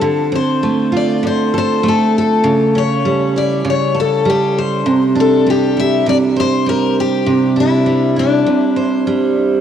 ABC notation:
X:1
M:4/4
L:1/8
Q:"Swing 16ths" 1/4=100
K:Cmix
V:1 name="Steel-string acoustic guitar"
A c2 d c c A A- | A ^c2 d c A G =c- | c A G e d c B G- | G E2 D4 z |]
V:2 name="Steel-string acoustic guitar" clef=bass
D, C A, F D, A A,2 | ^C, ^C G, E C, A G,2 | C, D G, E C, c G,2 | C, D G, E C, c G,2 |]